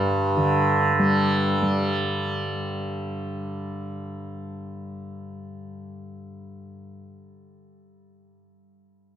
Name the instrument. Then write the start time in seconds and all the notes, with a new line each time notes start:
tanpura
Already playing: G2 D3 G3
0.37 D3
0.99 G3
1.62 G3